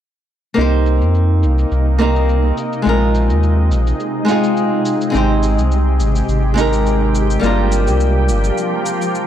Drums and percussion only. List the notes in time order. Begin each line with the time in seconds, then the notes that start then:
0.58 shaker
0.86 shaker
1.02 shaker
1.15 shaker
1.43 shaker
1.59 shaker
1.72 shaker
2.00 shaker
2.16 shaker
2.29 shaker
2.57 shaker
2.73 shaker
2.86 shaker
3.15 shaker
3.30 shaker
3.43 shaker
3.71 shaker
3.87 shaker
4.00 shaker
4.28 shaker
4.44 shaker
4.57 shaker
4.86 shaker
5.01 shaker
5.15 shaker
5.43 shaker
5.59 shaker
5.72 shaker
6.00 shaker
6.16 shaker
6.29 shaker
6.58 shaker
6.73 shaker
6.86 shaker
7.15 shaker
7.31 shaker
7.43 shaker
7.72 shaker
7.87 shaker
8.00 shaker
8.29 shaker
8.44 shaker
8.58 shaker
8.86 shaker
9.02 shaker
9.15 shaker